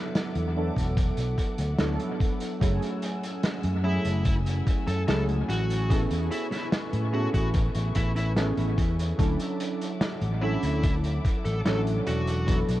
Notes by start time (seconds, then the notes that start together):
Already playing: F#3 B3 D4 E4 A4 E5 F#5 D6
0.15 snare, closed hi-hat
0.35 E2, closed hi-hat
0.55 F#3 B3 D4 E4 A4
0.76 E1, kick, closed hi-hat
0.97 kick, closed hi-hat
1.17 B1, closed hi-hat
1.38 kick, closed hi-hat
1.58 D2, closed hi-hat
1.78 D2 F#3 B3 D4 E4 A4, snare, closed hi-hat
2.00 closed hi-hat
2.20 kick, closed hi-hat
2.40 closed hi-hat
2.60 F#1 F#3 A3 C#4 E4 G#4 G#5 E6, kick, closed hi-hat
2.82 closed hi-hat
3.02 closed hi-hat
3.24 closed hi-hat
3.44 snare, closed hi-hat
3.64 F#2, closed hi-hat
3.83 F#3 A3 C#4 E4 G#4
4.05 F#1, closed hi-hat
4.25 kick, closed hi-hat
4.46 closed hi-hat
4.67 kick, closed hi-hat
4.87 F#2 A4, closed hi-hat
5.07 C#2 F#3 A3 C#4 E4 G#4 A4, snare, closed hi-hat
5.29 closed hi-hat
5.49 A1 F#4, closed hi-hat
5.70 closed hi-hat
5.89 B3 C#4 E4 G#4 A4 B4 E5 C#6, kick, closed hi-hat
6.10 E2, closed hi-hat
6.31 E4, closed hi-hat
6.52 E4, snare, closed hi-hat
6.72 snare, closed hi-hat
6.93 A2, closed hi-hat
7.12 B3 C#4 E4 F#4 G#4 A4
7.34 A1 F#4, kick, closed hi-hat
7.54 kick, closed hi-hat
7.75 A1, closed hi-hat
7.95 A1 E4, kick, closed hi-hat
8.16 E4, closed hi-hat
8.36 B3 C#4 E4 G#4 A4, snare, closed hi-hat
8.57 A1, closed hi-hat
8.78 E2, kick, closed hi-hat
8.99 closed hi-hat
9.17 D2 F#3 C#4 D4 E4 A4 E5 F#5 D6, kick, closed hi-hat
9.40 closed hi-hat
9.60 closed hi-hat
9.82 closed hi-hat
10.01 snare, closed hi-hat
10.22 A1, closed hi-hat
10.41 F#3 C#4 D4 E4 A4
10.63 D2, closed hi-hat
10.83 kick, closed hi-hat
11.04 closed hi-hat
11.24 kick, closed hi-hat
11.45 A1 A4, closed hi-hat
11.65 A1 F#3 C#4 D4 E4 A4, snare, closed hi-hat
11.87 closed hi-hat
12.07 E1 F#4, closed hi-hat
12.27 closed hi-hat
12.46 F#3 B3 D4 E4 A4 E5, kick, closed hi-hat
12.68 B1, closed hi-hat